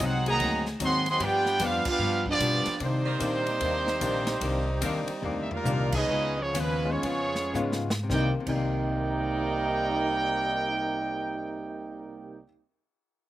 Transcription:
0.00 C2 G#2 F#3 C4 D#4 F#4, kick, hi-hat pedal, ride
0.05 D#4 G#4 C5 F#5
0.26 D#3 F#3 A#3 C4 D#4 G#4, ride
0.30 D#5 F#5 A#5
0.39 D2 G#2 F#3 C4, kick, ride
0.43 D#4
0.66 snare
0.80 D#2 G#2 F#3 C4 D#4, kick, hi-hat pedal, ride
0.84 D#3 F#3 G#4 D#5 F#5 C6
1.06 D#3 C4, ride
1.10 F#3 G#4 D#5 F#5 C6
1.19 G2 F3 B3 D4 G4, kick, ride
1.23 D4 F4 B4 D5 G5
1.46 snare
1.59 F2 G2 F3 B3 D4 F4, kick, hi-hat pedal, ride
1.65 D4 G4 B4 F5
1.85 B3 D4 F4, kick, crash
1.90 D4 G4 B4 F5
1.99 G2 F3 B3
2.03 D4
2.26 F3 B3 D4, kick
2.31 B3 F4 G4 D5
2.39 G2 B2 F3 B3 D4, kick, hi-hat pedal, ride
2.65 muted upright bass stroke, snare, ride
2.80 C3 D#3 A#3 D4, kick, ride
2.84 G3 A#3 C4 D#4 G4 C5
3.05 D#3 C4 A#4 D5
3.19 A#2 C3 D#3 A#3 D4, kick, hi-hat pedal, ride
3.46 ride
3.60 D#2 C3 D#3 A#3 D4, kick, ride
3.87 snare
4.00 A#1 C3 D#3 A#3 D4, kick, hi-hat pedal, ride
4.27 snare, ride
4.40 C2 C3 D#3 A#3, kick, ride
4.45 D4
4.81 D#2 C3 D#3 A#3 C4 D4 A#4, kick, hi-hat pedal, ride
5.08 muted upright bass stroke, ride
5.21 D2 C3 D#3 A#3, floor tom
5.25 D4
5.42 E5
5.51 G3 A#3 D#4 F4 A#4 D5 F5, floor tom
5.64 C2 C3 D#3 A#3 D4, hi-hat pedal, mid tom
5.92 F3 G#3 B3 C#4 D#4 G#4, kick, crash
5.96 C#4 G#4 B4 D#5
6.09 C#2 C#3 G#3 B3
6.13 F4
6.39 F3 G#3 B3 C#4 F4 G#4 C#5
6.53 D#2 C#3 F3 G#3 B3 F4, kick, hi-hat pedal, ride
6.60 G#3 C#4 F4 B4
6.85 G#3 B3 C#4 D#4 F4
6.89 F3 G#3 B3 C#4 F4 G#4 C#5
7.03 F2 C#3 G#3 B3 F4, kick, ride
7.35 snare
7.54 G#2 C#3 G#3 B3 C#4 D#4 F4, hi-hat pedal
7.72 snare
7.90 snare
8.03 C3
8.09 C2 C3 D#3 G3 A#3 C4 D4 D#4 A#4 D5 G5, kick, snare
8.19 A#3
8.40 C3
8.46 C2 C3 D#3 G3 A#3 C4 D#4 A#4 D5, kick, crash
8.50 D#4 A#4 G5
8.55 A#3

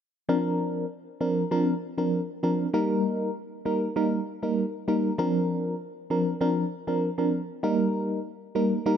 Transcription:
0.29 F3 C4 D4 A#4
1.21 F3 C4 D4 A#4
1.51 F3 C4 D4 A#4
1.98 F3 C4 D4 A#4
2.43 F3 C4 D4 A#4
2.74 G3 A#3 D#4 A#4
3.65 G3 A#3 D#4 A#4
3.96 G3 A#3 D#4 A#4
4.42 G3 A#3 D#4 A#4
4.88 G3 A#3 D#4 A#4
5.18 F3 C4 D4 A#4
6.10 F3 C4 D4 A#4
6.41 F3 C4 D4 A#4
6.87 F3 C4 D4 A#4
7.18 F3 C4 D4 A#4
7.63 G3 A#3 D#4 A#4
8.55 G3 A#3 D#4 A#4
8.86 G3 A#3 D#4 A#4

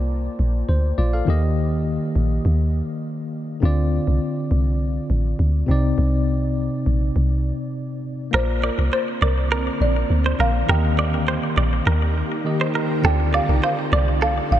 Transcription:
Already playing: C2 A#3 F4 C5 D5
0.39 A#1
0.69 D2 C5
0.98 A#1 F4 D5
1.13 A4 F5
1.25 D#2 D#3 A#3 G4
1.30 D#5
2.16 A#1
2.45 D#2
3.60 D2 D3 C4 F4
3.65 D5
4.07 C2
4.51 C2
5.10 A1
5.39 D2
5.66 C2 C3 C4 D#4
5.71 D5
5.98 C2
6.86 A#1
7.16 C2
8.31 A#1 D3 A#3 C4 F4 A#4 C5
8.36 D5
8.64 A#4 D5
8.78 C2
8.93 C5
9.22 C2 A#4 D5
9.52 A#4
9.80 A#1 D5
10.10 D2
10.26 C5
10.39 A#1 A#4 F5
10.66 D#2 D#3 A#3 D#4 G4 A#4 G5
10.71 D#5
10.99 D5
11.28 C5
11.57 A#1 D5
11.86 D#2 A#4
12.44 D#3 A#3 G4 D#5
12.61 C5
12.75 A#4
13.01 D2 D3 A3 C4 F4 A4 G5
13.06 D5
13.34 D5 F5
13.49 C2
13.64 C5 F5
13.92 C2 D5
14.22 A4 F5
14.51 A1 F5

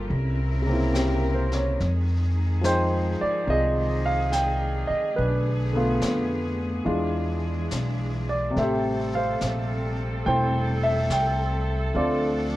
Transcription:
Already playing: F3 G3 A#3 F4 G4 A4 A#4
0.07 C2 C#3 C4 E4 A#4, brush sweep
0.62 C#3 A#3
0.69 C4 E4
0.94 G4, snare, hi-hat pedal
1.14 A#4
1.34 C5
1.51 C#5, snare
1.79 F2 D#3 G#3 G#4, brush sweep, snare
2.61 F3 G#3 D#4 C5, snare, hi-hat pedal
2.66 G5
3.21 D5, muted upright bass stroke
3.47 C2 C4 F4 G#4 D#5, brush sweep
4.06 F5
4.32 G5, snare, hi-hat pedal
4.88 D#5, muted upright bass stroke
5.16 B1 D3 A3 B3 D4 B4, brush sweep
5.72 D3 A3 B3
5.77 F4
6.02 F2, snare, hi-hat pedal
6.85 E2 E3 G#3 D4 F4, brush sweep
7.71 B1, snare, hi-hat pedal
8.29 D5
8.50 C3 A3
8.56 A1 G3 C4 A4 E5, brush sweep, snare
8.60 G4 C5
9.15 C5 F5
9.41 A#1, snare, hi-hat pedal
10.25 E1 A3 E4 C5 G5, brush sweep
10.83 E5
11.10 C2 G5, snare, hi-hat pedal
11.91 D2 D3 F3 A3 D4, brush sweep
11.96 C4 F4 D5

